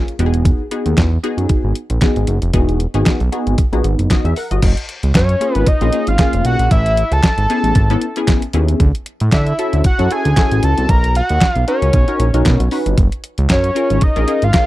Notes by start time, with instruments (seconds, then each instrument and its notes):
Already playing: analog polysynth A#3 C#4 F4 G#4
0.08 closed hi-hat
0.19 analog synth bass E1, analog polysynth B3 D#4 F#4 G4, closed hi-hat
0.26 analog polysynth G#4
0.34 closed hi-hat
0.45 kick, closed hi-hat
0.71 analog polysynth B3 D#4 F#4 G#4, closed hi-hat
0.86 analog synth bass D#2, closed hi-hat
0.97 analog synth bass E2, kick, snare, clap, closed hi-hat
1.23 analog polysynth B3 D#4 F#4 G#4, closed hi-hat
1.37 analog synth bass F#2, closed hi-hat
1.49 kick, closed hi-hat
1.64 analog synth bass G#1
1.75 closed hi-hat
1.90 analog synth bass A#1, closed hi-hat
2.01 analog polysynth B3 D#4 F#4 G#4, kick, snare, clap, closed hi-hat
2.16 analog synth bass G#1, closed hi-hat
2.27 analog synth bass F#1, closed hi-hat
2.42 analog synth bass F1, closed hi-hat
2.53 analog synth bass E1, analog polysynth B3 D#4 F#4 G#4, kick, closed hi-hat
2.69 closed hi-hat
2.80 closed hi-hat
2.94 analog synth bass G#1, analog polysynth B3 D#4 F#4 G#4, closed hi-hat
3.06 kick, snare, clap, closed hi-hat
3.20 analog synth bass B1, closed hi-hat
3.32 analog polysynth B3 D#4 F#4 G#4, closed hi-hat
3.47 analog synth bass G#1, closed hi-hat
3.58 kick, closed hi-hat
3.73 analog synth bass A#1, analog polysynth B3 D#4 F#4 G#4, closed hi-hat
3.84 analog synth bass G#1, closed hi-hat
3.99 analog synth bass F#1, closed hi-hat
4.10 analog polysynth F#4 D#5, kick, snare, clap, closed hi-hat
4.25 analog synth bass E2, analog polysynth G#4 E5, closed hi-hat
4.36 analog polysynth A#4 F#5, open hi-hat
4.51 analog synth bass G1, analog polysynth F#4 D#5, closed hi-hat
4.62 analog synth bass F#1, kick, closed hi-hat, crash
4.77 closed hi-hat
4.89 closed hi-hat
5.03 analog synth bass C#2, closed hi-hat
5.15 analog synth bass F#2, analog synth lead C#5, kick, snare, clap, closed hi-hat
5.29 closed hi-hat
5.41 analog polysynth A#3 C#4 F4 G#4, closed hi-hat
5.54 analog synth bass G#1, analog synth lead B4, closed hi-hat
5.67 analog synth lead D#5, kick, closed hi-hat
5.81 analog synth bass A#1, analog polysynth A#3 C#4 F4 G#4, closed hi-hat
5.93 analog polysynth A#3 C#4 F4 G#4, closed hi-hat
6.07 analog synth bass G#1, analog synth lead F5, closed hi-hat
6.18 analog polysynth A#3 C#4 F4 G#4, kick, snare, clap, closed hi-hat
6.33 analog synth bass F1, closed hi-hat
6.45 analog synth bass B1, analog synth lead F#5, closed hi-hat
6.59 analog synth bass A#1, closed hi-hat
6.71 analog synth bass A1, analog synth lead E5, kick, closed hi-hat
6.86 closed hi-hat
6.97 closed hi-hat
7.12 analog synth bass C#2, analog synth lead A5, closed hi-hat
7.23 kick, snare, clap, closed hi-hat
7.38 analog synth bass G#1, closed hi-hat
7.50 analog polysynth B3 C#4 E4 G#4, closed hi-hat
7.64 analog synth bass A1, closed hi-hat
7.75 analog synth bass G#1, kick, closed hi-hat
7.90 analog polysynth B3 C#4 E4 A4, closed hi-hat
8.01 closed hi-hat
8.16 analog polysynth B3 C#4 E4 G#4, closed hi-hat
8.28 kick, snare, clap, closed hi-hat
8.42 closed hi-hat
8.53 analog synth bass D#2, analog polysynth B3 C#4 E4 G#4, closed hi-hat
8.68 closed hi-hat
8.80 analog synth bass D2, kick, closed hi-hat
8.95 closed hi-hat
9.06 closed hi-hat
9.20 analog synth bass A2, closed hi-hat
9.32 analog synth bass D3, analog synth lead E5, kick, snare, clap, closed hi-hat
9.47 closed hi-hat
9.59 analog polysynth C#4 E4 F#4 A4, closed hi-hat
9.73 analog synth bass D2, closed hi-hat
9.84 analog synth lead F#5, kick, closed hi-hat
9.99 analog synth bass F#2, analog polysynth C#4 E4 F#4 A4, closed hi-hat
10.11 analog polysynth C#4 E4 F#4 A4, analog synth lead G#5, closed hi-hat
10.25 analog synth bass D2, closed hi-hat
10.37 analog polysynth C#4 E4 F#4 A4, kick, snare, clap, closed hi-hat
10.51 analog synth bass A1, closed hi-hat
10.63 analog synth bass C#2, analog synth lead A5, closed hi-hat
10.78 analog synth bass C2, closed hi-hat
10.89 analog synth bass B1, analog synth lead A#5, kick, closed hi-hat
11.04 closed hi-hat
11.15 analog synth lead F#5, closed hi-hat
11.29 analog synth bass D#2, closed hi-hat
11.41 kick, snare, clap, closed hi-hat
11.52 analog synth lead F5, closed hi-hat
11.56 analog synth bass B1
11.67 analog polysynth C#4 D#4 F#4 A#4, analog synth lead C#5, closed hi-hat
11.82 analog synth bass C#2, closed hi-hat
11.93 analog synth bass B1, kick, closed hi-hat
12.08 analog polysynth C#4 D#4 F#4 A#4, closed hi-hat
12.19 analog synth bass A#1, closed hi-hat
12.34 analog synth bass B1, analog polysynth C#4 D#4 F#4 A#4, closed hi-hat
12.45 analog synth bass B2, kick, snare, clap, closed hi-hat
12.60 analog synth bass B1, closed hi-hat
12.71 analog polysynth C#4 D#4 F#4 B4, open hi-hat
12.86 analog synth bass G1, closed hi-hat
12.98 analog synth bass F#1, kick, closed hi-hat
13.12 closed hi-hat
13.24 closed hi-hat
13.38 analog synth bass C#2, closed hi-hat
13.50 analog synth bass F#2, analog synth lead C#5, kick, snare, clap, closed hi-hat
13.64 closed hi-hat
13.75 analog polysynth C#4 F4 G#4 A#4, closed hi-hat
13.90 analog synth bass G#1, closed hi-hat
14.01 analog synth lead D#5, kick, closed hi-hat
14.16 analog synth bass A#1, analog polysynth C#4 F4 G#4 A#4, closed hi-hat
14.27 analog polysynth C#4 F4 G#4 A#4, closed hi-hat
14.42 analog synth bass G#1, analog synth lead F5, closed hi-hat
14.53 analog polysynth C#4 F4 G#4 A#4, kick, snare, clap, closed hi-hat